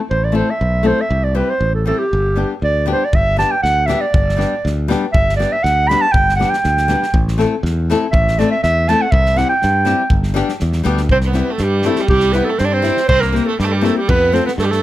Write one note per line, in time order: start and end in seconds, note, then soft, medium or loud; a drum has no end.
0.10 0.41 A1 medium
0.10 0.26 C5 medium
0.25 0.37 D5 medium
0.32 0.50 A3 medium
0.32 0.50 C4 medium
0.32 0.50 E4 medium
0.32 0.51 A4 medium
0.32 0.52 C5 medium
0.50 0.88 E5 medium
0.61 0.91 B1 medium
0.83 1.00 A3 medium
0.83 1.01 C4 medium
0.83 1.01 E4 medium
0.83 1.01 A4 medium
0.83 1.02 C5 medium
1.01 1.26 E5 medium
1.11 1.41 C2 medium
1.24 1.37 D5 medium
1.35 1.52 G3 medium
1.35 1.52 C4 medium
1.35 1.52 E4 medium
1.35 1.52 G4 medium
1.35 1.51 B4 medium
1.50 1.74 C5 medium
1.61 1.91 A1 medium
1.74 1.86 A4 medium
1.86 2.02 G3 medium
1.86 2.03 C4 medium
1.86 2.03 E4 medium
1.86 2.03 G4 medium
1.86 2.00 A4 medium
1.98 2.50 G4 medium
2.13 2.43 G1 medium
2.36 2.52 G3 medium
2.36 2.53 B3 soft
2.36 2.53 D4 soft
2.36 2.53 G4 medium
2.62 2.93 D2 medium
2.62 2.87 D5 medium
2.86 3.03 G3 medium
2.86 3.03 B3 medium
2.86 3.03 D4 medium
2.86 3.04 G4 medium
2.91 3.06 C5 medium
3.05 3.17 D5 medium
3.13 3.43 G1 medium
3.13 3.38 E5 loud
3.13 kick medium
3.37 3.53 G3 medium
3.37 3.54 B3 soft
3.37 3.54 D4 soft
3.37 3.54 G4 medium
3.37 3.53 A5 medium
3.37 snare soft
3.51 3.62 G5 medium
3.63 3.94 D2 medium
3.63 3.88 F#5 loud
3.63 snare soft
3.86 4.04 G3 medium
3.86 4.04 B3 medium
3.86 4.04 D4 medium
3.86 4.05 G4 medium
3.86 4.02 E5 medium
3.86 snare soft
4.01 4.76 D5 medium
4.14 4.44 G1 loud
4.14 kick loud
4.29 snare soft
4.36 4.53 G3 medium
4.36 4.54 B3 medium
4.36 4.54 D4 medium
4.36 4.54 G4 medium
4.36 snare soft
4.65 4.94 D2 medium
4.65 snare soft
4.88 5.04 G3 medium
4.88 5.04 B3 medium
4.88 5.05 D4 medium
4.88 5.05 G4 medium
4.88 snare soft
5.12 5.44 G1 loud
5.12 5.36 E5 medium
5.12 kick loud
5.29 snare soft
5.36 5.54 G3 medium
5.36 5.55 B3 soft
5.36 5.55 G4 medium
5.36 5.54 D5 medium
5.41 5.55 D4 medium
5.41 snare soft
5.52 5.64 E5 medium
5.63 5.94 D2 medium
5.63 5.90 F#5 loud
5.63 snare soft
5.88 6.05 G3 medium
5.88 6.05 B3 medium
5.88 6.05 D4 medium
5.88 6.06 G4 medium
5.88 6.03 B5 loud
5.88 snare soft
6.01 6.13 A5 medium
6.12 6.44 G1 medium
6.12 6.35 G5 loud
6.12 kick loud
6.29 snare soft
6.36 6.54 G3 medium
6.36 6.55 B3 medium
6.36 6.51 F#5 medium
6.40 6.55 D4 medium
6.40 6.55 G4 medium
6.40 snare soft
6.50 7.25 G5 medium
6.50 snare soft
6.64 6.94 D2 medium
6.64 snare soft
6.77 snare soft
6.88 7.04 G3 medium
6.88 7.04 B3 medium
6.88 7.05 D4 medium
6.88 7.05 G4 medium
6.88 snare soft
7.03 snare soft
7.14 7.44 A1 loud
7.14 kick medium
7.28 snare soft
7.38 7.53 A3 medium
7.38 7.54 C4 medium
7.38 7.54 E4 medium
7.38 7.54 A4 medium
7.38 snare soft
7.63 7.93 E2 medium
7.63 snare soft
7.90 8.04 A3 medium
7.90 8.05 C4 medium
7.90 8.05 E4 medium
7.90 8.05 A4 medium
7.90 snare soft
8.11 8.43 A1 medium
8.11 8.41 E5 medium
8.11 kick loud
8.28 snare soft
8.39 8.54 A3 medium
8.39 8.54 C4 medium
8.39 8.54 E4 medium
8.39 8.55 A4 medium
8.39 8.51 D5 medium
8.39 snare soft
8.51 8.62 E5 medium
8.63 8.93 E2 medium
8.63 8.90 E5 loud
8.63 snare soft
8.88 9.04 A3 medium
8.88 9.04 C4 medium
8.88 9.04 E4 medium
8.88 9.04 A4 medium
8.88 9.03 A5 medium
8.88 snare soft
9.02 9.13 F#5 medium
9.11 9.43 C2 loud
9.11 9.39 E5 loud
9.11 kick loud
9.26 snare soft
9.36 9.52 G3 medium
9.36 9.52 C4 medium
9.36 9.53 E4 medium
9.36 9.53 G4 medium
9.36 9.49 F#5 medium
9.36 snare soft
9.49 10.20 G5 medium
9.62 9.93 G2 medium
9.62 snare soft
9.85 10.01 G3 medium
9.85 10.01 C4 medium
9.85 10.02 E4 medium
9.85 10.02 G4 medium
9.85 snare soft
10.10 10.41 G1 medium
10.10 kick medium
10.23 snare soft
10.34 10.50 G3 medium
10.34 10.51 B3 medium
10.34 10.51 D4 medium
10.34 10.51 G4 medium
10.34 snare soft
10.49 snare soft
10.60 10.83 E2 medium
10.60 snare soft
10.73 snare soft
10.84 11.08 D2 medium
10.84 11.00 G3 medium
10.84 11.01 B3 medium
10.84 11.01 D4 medium
10.84 11.01 G4 medium
10.84 snare soft
10.98 snare soft
11.09 11.41 C2 loud
11.09 11.17 C4 medium
11.09 11.17 C5 loud
11.09 kick medium
11.21 11.52 B3 medium
11.21 snare soft
11.26 11.54 B4 medium
11.33 11.50 G3 medium
11.33 11.50 C4 medium
11.33 11.50 E4 medium
11.33 11.51 G4 medium
11.33 snare soft
11.51 11.65 A3 medium
11.51 11.64 A4 medium
11.58 11.89 G2 medium
11.58 snare soft
11.62 11.87 G3 medium
11.62 11.88 G4 medium
11.82 12.00 G3 medium
11.82 12.02 A3 medium
11.82 12.00 C4 medium
11.82 12.01 E4 medium
11.82 12.01 G4 medium
11.82 snare soft
11.87 12.01 A4 medium
11.96 12.08 G4 medium
11.96 snare soft
12.01 12.10 G3 medium
12.08 12.40 C2 medium
12.08 12.37 G3 medium
12.08 12.34 G4 loud
12.08 kick medium
12.20 snare soft
12.32 12.50 G3 medium
12.32 12.51 B3 medium
12.32 12.50 C4 medium
12.32 12.50 E4 soft
12.32 12.51 G4 medium
12.32 12.46 B4 medium
12.32 snare soft
12.45 12.61 A4 medium
12.49 12.61 A3 medium
12.58 12.90 G2 medium
12.58 12.66 C4 medium
12.58 12.67 C5 medium
12.58 snare soft
12.65 12.73 D4 medium
12.65 12.75 D5 medium
12.72 13.08 C4 medium
12.72 13.08 C5 medium
12.82 12.99 G3 medium
12.82 12.99 C4 medium
12.82 12.99 E4 medium
12.82 13.00 G4 medium
12.82 snare soft
12.97 snare soft
13.08 13.39 C2 loud
13.08 13.23 C4 medium
13.08 13.22 C5 loud
13.08 kick medium
13.20 13.46 A#3 medium
13.20 13.44 A#4 medium
13.20 snare soft
13.32 13.48 A#3 medium
13.32 13.49 C4 medium
13.32 13.49 E4 medium
13.32 13.49 G4 medium
13.32 snare soft
13.45 13.58 A3 medium
13.45 13.56 A4 medium
13.59 13.89 G2 medium
13.59 13.66 G3 medium
13.59 13.68 G4 medium
13.59 snare soft
13.64 13.73 A3 medium
13.64 13.76 A4 medium
13.72 13.86 G3 medium
13.72 13.87 G4 medium
13.81 13.97 A3 medium
13.81 13.98 A#3 medium
13.81 13.98 C4 medium
13.81 13.98 E4 medium
13.81 13.99 G4 medium
13.81 13.97 A4 medium
13.81 snare soft
13.98 14.12 G3 medium
13.98 14.10 G4 medium
14.09 14.39 F2 loud
14.09 14.35 B3 medium
14.09 14.35 B4 loud
14.09 kick loud
14.32 14.48 A3 medium
14.32 14.48 C4 medium
14.32 14.46 C4 medium
14.32 14.49 F4 soft
14.32 14.49 A4 medium
14.32 14.45 C5 medium
14.32 snare soft
14.46 14.52 B3 medium
14.46 14.51 B4 medium
14.46 snare soft
14.58 14.83 G2 medium
14.58 14.66 A3 medium
14.58 14.65 A4 medium
14.58 snare soft
14.63 14.72 G3 medium
14.63 14.72 G4 medium
14.70 14.83 A3 medium
14.70 14.83 A4 medium
14.70 snare soft